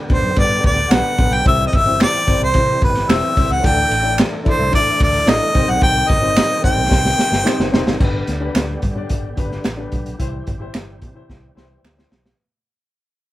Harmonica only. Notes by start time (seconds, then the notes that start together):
0.11 C5
0.39 D5
0.66 D5
0.92 F#5
1.34 G5
1.47 E5
1.67 D#5
1.76 E5
2.02 D5
2.44 C5
2.84 B4
3.12 E5
3.52 F#5
3.65 G5
4.48 C5
4.75 D5
5.03 D5
5.29 D#5
5.70 F#5
5.83 G5
6.09 D#5
6.64 G5